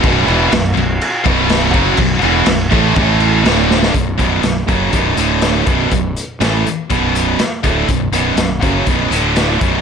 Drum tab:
CC |x-x-x-x-x-x-x-x-|x-x-x-x-x-x-x---|----------------|----------------|
HH |----------------|----------------|x-x-x-x-x-x-x-x-|x-x-x-x-x-x-x-x-|
SD |----o-------o---|----o-------o-oo|----o-------o---|----o-------o---|
BD |o---------o---o-|o-----o-o-------|o-o---o-o-----o-|o-------o-----o-|

CC |----------------|
HH |x-x-x-x-x-x-x-x-|
SD |----o-------o---|
BD |o-----o-o-----o-|